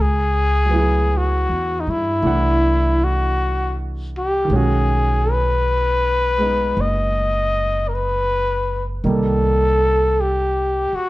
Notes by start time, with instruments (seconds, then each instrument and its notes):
Already playing: upright bass C#2
0.01 trumpet G#4
0.65 grand piano F#3
0.70 grand piano B3 E4
0.77 grand piano G#4
1.17 trumpet F#4
1.49 upright bass E2
1.80 trumpet D#4
1.87 upright bass G2, trumpet E4
2.22 upright bass C2, grand piano E3 A3 D4
2.27 grand piano F#5
3.04 trumpet F#4
4.18 trumpet G4
4.44 grand piano D#3
4.49 upright bass B1, grand piano G#3
4.53 grand piano C#4 F#4, trumpet G#4
5.31 trumpet B4
6.38 grand piano G#3 B3 D#4
6.77 upright bass F#1
6.81 trumpet D#5
7.88 trumpet A#4
7.94 trumpet B4
9.04 upright bass C2, grand piano D#3 G3 A#3 D#4
9.09 trumpet A4
10.21 trumpet G4
10.92 trumpet F#4, muted upright bass stroke